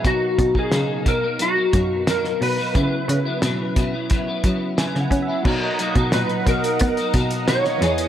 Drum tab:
CC |----------------|----------------|x---------------|
HH |x-x-x-x-x-x-x-o-|x-x-x-x-x-x-x-x-|--xxxxxxxxxxx-xx|
SD |----o-------oo--|----o-------oo--|----o-------oo--|
BD |o-oo--o---o-----|o-----o-o-o---o-|o--o--o-o-o-----|